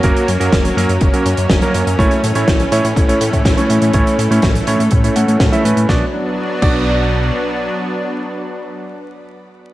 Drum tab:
CC |----------------|----------------|----------------|------x---------|
HH |xxxxxxxxxxxxxxxx|xxxxxxxxxxxxxxxx|xxxxxxxxxxxxxxxx|----------------|
SD |----o-------o---|----o-------o---|----o-------o---|o---------------|
BD |o---o---o---o---|o---o---o--oo---|o---o---o---o---|o-----o---------|

CC |----------------|
HH |----------------|
SD |----------------|
BD |----------------|